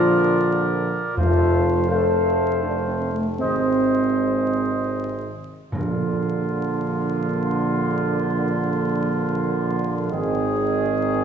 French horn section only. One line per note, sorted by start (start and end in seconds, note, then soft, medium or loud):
0.00 0.76 F4 medium
1.16 1.85 F4 medium
1.89 2.59 A4 medium
2.63 2.74 D4 medium
2.87 3.11 C4 medium
3.14 3.25 A3 medium
3.38 5.29 C4 medium
5.73 10.07 A#3 medium
10.11 11.24 C4 medium